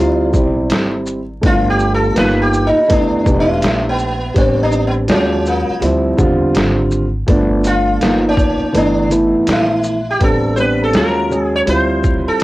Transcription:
Already playing: upright bass D2, grand piano G3 C4 E4, sitar D4
0.00 grand piano F4
0.32 upright bass B1, grand piano G3 C4 E4 G4, kick, shaker
0.70 upright bass G#1, snare, closed hi-hat
1.06 shaker
1.41 upright bass G1, grand piano A3 B3 D4 E4, kick, closed hi-hat
1.46 sitar F4
1.51 grand piano F4
1.70 sitar G4
1.79 shaker
1.94 sitar A4
2.14 upright bass G1, grand piano A#3 B3 D#4 F4, sitar B4, snare, closed hi-hat
2.42 sitar G4
2.53 shaker
2.67 sitar D#4
2.88 upright bass G1, grand piano A3 B3 D4 E4, sitar D4, kick, closed hi-hat
3.25 upright bass E1, grand piano A3 B3 D4 G4, kick, shaker
3.40 sitar E4
3.62 upright bass A#1, snare, closed hi-hat
3.89 sitar B3
3.99 shaker
4.34 upright bass A1, grand piano G3 B3 C4 D4, sitar C4, kick, closed hi-hat
4.63 sitar D4
4.72 shaker
4.87 sitar B3
5.08 upright bass D#2, grand piano F#3 G#3 C#4 F4, sitar C#4, snare, closed hi-hat
5.46 sitar A#3, shaker
5.69 muted upright bass stroke
5.80 upright bass D2, grand piano F3 G3 C4 E4, closed hi-hat
6.17 upright bass E2, grand piano D3 G3 C4 F4, kick, shaker
6.55 upright bass G#1, snare, closed hi-hat
6.91 shaker
7.27 upright bass G1, grand piano F3 A3 B3 D4, kick, closed hi-hat
7.64 sitar F4, closed hi-hat, shaker
8.00 upright bass G1, grand piano F3 A#3 B3 D#4, snare, closed hi-hat
8.29 sitar C#4
8.37 kick, shaker
8.62 muted upright bass stroke
8.72 upright bass G1, grand piano E3 A3 B3 D4, closed hi-hat
8.77 sitar D4
9.09 grand piano E3 A3 B3 E4, closed hi-hat, shaker
9.35 muted upright bass stroke
9.47 upright bass A#1, snare, closed hi-hat
9.52 sitar E4
9.84 shaker
10.11 sitar G4
10.19 upright bass A1, grand piano G3 B3 C4 D4, kick, closed hi-hat
10.24 sitar A4
10.56 grand piano G3 B3 C4 D4, sitar B4 C5, shaker
10.84 sitar A4
10.92 upright bass D#2, grand piano F#3 G#3 C#4 F4, sitar A#4, snare, closed hi-hat
11.29 grand piano F#3 G#3 C#4 G#4, shaker
11.44 sitar G#4
11.56 sitar C#5
11.66 upright bass D2, grand piano G3 C4 E4 F4, sitar C5, closed hi-hat
12.04 kick, shaker
12.27 sitar A4, muted upright bass stroke
12.40 closed hi-hat

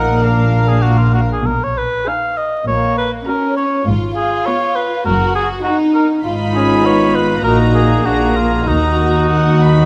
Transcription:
Already playing: double bass section A#1, cello section A#2, violin section A#3 F#5, viola section D#4 A#4, cor anglais A#4
0.22 viola section D4 A#4, violin section F5
0.68 cor anglais G#4
0.82 cor anglais F#4
0.98 cor anglais F4
1.14 cor anglais F#4
1.32 cor anglais G#4
1.44 double bass section B1, cello section B2, cor anglais A#4
1.64 cor anglais C#5
1.78 cor anglais B4
2.06 viola section D#4 G#4, cor anglais F5, violin section G#5
2.37 cor anglais D#5
2.66 double bass section A#1, cello section A#2, violin section A#3, cor anglais C#5
2.98 cor anglais B4
3.27 violin section C#4 A#5, viola section C#4 F#4, cor anglais A#4
3.57 cor anglais C#5
3.87 double bass section G#1, cello section G#2, violin section F4
4.16 violin section F4, cor anglais G#4
4.46 viola section B3 F4, cor anglais C#5, violin section B5
4.75 cor anglais B4
5.05 double bass section F#1, cello section F#2, violin section F#4, cor anglais A#4
5.35 cor anglais G#4
5.63 violin section D#4 A#5, viola section D#4 F#4, cor anglais F#4
5.94 cor anglais A#4
6.24 double bass section G#1, cello section G#2, viola section D#4 F4, violin section F4 B5
6.55 violin section C#4, cor anglais G#4
6.84 violin section B3, cor anglais C#5
7.15 cor anglais B4
7.43 double bass section A#1, cello section A#2, violin section A#3 A#5, viola section D#4 F#4, cor anglais A#4
7.74 cor anglais G#4
8.04 double bass section A#1, cello section A#2, viola section D4 G#4, cor anglais F#4, violin section A#5
8.37 cor anglais F4
8.66 double bass section D#2, cello section D#3, cor anglais D#4, viola section D#4 F#4, violin section F#4 A#5
9.31 violin section F#5
9.62 violin section B5

